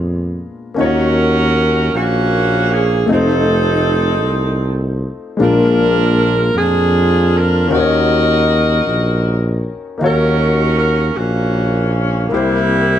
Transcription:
0.00 0.47 F2 medium
0.00 0.80 A#2 soft
0.00 0.72 G#3 medium
0.00 0.73 B3 soft
0.00 0.74 D4 soft
0.00 0.75 F4 medium
0.00 0.79 A#4 medium
0.74 1.89 D#2 medium
0.74 1.90 D#3 medium
0.74 3.03 A#3 medium
0.74 3.04 C#4 medium
0.74 3.05 D#4 medium
0.79 1.91 C#4 medium
0.79 0.85 F4 soft
0.79 1.90 F#4 medium
0.79 1.91 A#4 loud
0.79 3.07 C#5 medium
0.86 3.09 F#4 medium
1.93 3.05 A#1 medium
1.93 3.06 A#3 medium
1.93 3.06 C#4 medium
1.93 2.72 F#4 loud
2.71 3.10 G#4 medium
3.06 4.25 F1 loud
3.06 5.34 A3 medium
3.06 5.35 C4 medium
3.06 5.36 D#4 medium
3.10 4.98 C4 medium
3.10 4.98 D#4 medium
3.10 5.37 F4 medium
3.10 4.98 A4 medium
3.10 5.38 C5 medium
4.24 5.08 C2 medium
5.37 6.51 A#1 loud
5.37 6.51 A#2 medium
5.37 7.65 G#3 medium
5.37 7.66 A#3 medium
5.37 7.66 D4 medium
5.41 6.52 D4 medium
5.41 7.67 F4 medium
5.41 6.52 F4 medium
5.41 6.52 A#4 medium
5.41 7.68 A#4 medium
6.54 7.72 F2 loud
6.54 7.68 D4 medium
6.54 7.68 F4 medium
6.54 7.33 G#4 loud
7.35 7.71 A#4 medium
7.67 8.82 D#2 loud
7.67 8.82 D#3 medium
7.67 9.96 A#3 medium
7.67 9.96 C#4 medium
7.67 9.97 D#4 medium
7.72 9.98 F#4 medium
7.72 9.60 F#4 medium
7.72 9.60 A#4 medium
7.72 7.79 C5 medium
7.72 9.65 D#5 loud
7.80 10.02 C#5 medium
8.86 9.70 A#1 medium
9.98 11.12 D#2 medium
9.98 11.12 D#3 medium
9.98 12.26 A#3 medium
9.98 12.27 D#4 medium
9.98 12.28 F5 medium
10.02 11.14 C#4 medium
10.02 12.29 F#4 medium
10.02 11.14 F#4 medium
10.02 10.75 A#4 loud
10.02 12.29 C#5 medium
10.77 11.14 A#4 medium
11.16 12.27 A#1 medium
11.16 12.29 A#3 medium
11.16 12.29 C#4 medium
11.16 11.93 F#4 medium
12.29 12.99 C2 loud
12.29 12.99 C3 medium
12.29 12.99 A#3 medium
12.29 12.99 C4 medium
12.29 12.99 E4 medium
12.33 12.99 G3 medium
12.33 12.99 A#3 medium
12.33 12.99 E4 loud
12.33 12.99 G4 medium
12.33 12.99 C5 medium

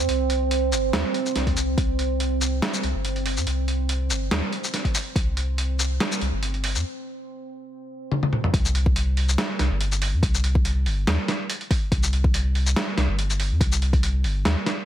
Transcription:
0.00 8.58 C4 medium
0.09 0.74 C2 loud
0.09 closed hi-hat medium
0.30 closed hi-hat medium
0.51 closed hi-hat medium
0.72 0.92 G1 loud
0.72 closed hi-hat soft
0.72 shaker medium
0.93 1.04 D#2 loud
0.93 snare loud
0.93 closed hi-hat medium
1.14 closed hi-hat medium
1.26 shaker soft
1.35 1.48 C2 medium
1.35 snare soft
1.35 closed hi-hat medium
1.47 1.56 D#2 medium
1.47 kick medium
1.47 closed hi-hat soft
1.57 1.76 C2 loud
1.57 closed hi-hat medium
1.57 shaker medium
1.78 2.61 C2 loud
1.78 kick loud
1.78 closed hi-hat medium
1.99 closed hi-hat medium
2.20 closed hi-hat medium
2.41 closed hi-hat soft
2.41 shaker medium
2.62 snare loud
2.62 closed hi-hat medium
2.74 shaker medium
2.83 2.94 C2 loud
2.83 closed hi-hat soft
2.95 3.38 G1 medium
3.05 closed hi-hat medium
3.16 closed hi-hat soft
3.26 open hi-hat medium
3.37 3.46 F2 medium
3.37 shaker soft
3.47 4.12 C2 loud
3.47 closed hi-hat medium
3.68 closed hi-hat medium
3.89 closed hi-hat medium
4.10 4.30 G1 loud
4.10 closed hi-hat soft
4.10 shaker medium
4.31 4.42 D#2 loud
4.31 snare loud
4.31 closed hi-hat medium
4.53 closed hi-hat soft
4.64 shaker medium
4.74 snare soft
4.74 closed hi-hat medium
4.85 kick medium
4.85 closed hi-hat soft
4.95 open hi-hat medium
4.95 shaker medium
5.16 5.99 C2 loud
5.16 kick loud
5.16 closed hi-hat medium
5.37 closed hi-hat medium
5.58 closed hi-hat medium
5.79 closed hi-hat medium
5.79 shaker medium
6.00 snare loud
6.00 closed hi-hat medium
6.12 shaker medium
6.21 6.32 C2 loud
6.21 closed hi-hat medium
6.33 6.76 G1 medium
6.43 closed hi-hat medium
6.54 closed hi-hat soft
6.64 open hi-hat loud
6.75 6.84 F2 medium
6.75 shaker medium
8.12 high tom medium
8.23 high tom medium
8.33 mid tom medium
8.44 mid tom medium
8.54 9.37 C2 loud
8.54 kick loud
8.54 closed hi-hat medium
8.65 shaker medium
8.75 closed hi-hat medium
8.86 kick loud
8.96 closed hi-hat medium
9.17 open hi-hat medium
9.29 shaker medium
9.38 snare loud
9.38 closed hi-hat medium
9.59 9.70 C2 loud
9.59 snare medium
9.59 closed hi-hat medium
9.71 10.14 G1 medium
9.81 closed hi-hat medium
9.92 closed hi-hat soft
9.92 shaker medium
10.02 open hi-hat loud
10.13 10.22 F2 medium
10.23 10.88 C2 loud
10.23 kick loud
10.23 closed hi-hat medium
10.34 shaker medium
10.44 closed hi-hat medium
10.55 kick loud
10.65 closed hi-hat medium
10.86 11.06 G1 loud
10.86 open hi-hat medium
11.07 11.18 D#2 loud
11.07 snare loud
11.07 closed hi-hat medium
11.28 snare medium
11.28 closed hi-hat medium
11.50 closed hi-hat medium
11.61 closed hi-hat soft
11.71 kick loud
11.71 open hi-hat medium
11.92 12.75 C2 loud
11.92 kick loud
11.92 closed hi-hat medium
12.03 shaker medium
12.13 closed hi-hat medium
12.24 kick loud
12.34 closed hi-hat medium
12.55 open hi-hat medium
12.67 shaker medium
12.76 snare loud
12.76 closed hi-hat medium
12.97 13.08 C2 loud
12.97 snare medium
12.97 closed hi-hat medium
13.09 13.52 G1 medium
13.19 closed hi-hat medium
13.30 closed hi-hat soft
13.30 shaker soft
13.40 open hi-hat medium
13.51 13.60 F2 medium
13.61 14.26 C2 loud
13.61 kick loud
13.61 closed hi-hat medium
13.72 shaker medium
13.82 closed hi-hat medium
13.93 kick loud
13.93 closed hi-hat soft
14.03 closed hi-hat medium
14.24 14.44 G1 loud
14.24 open hi-hat medium
14.45 14.56 D#2 loud
14.45 snare loud
14.45 closed hi-hat medium
14.66 snare medium
14.66 closed hi-hat medium

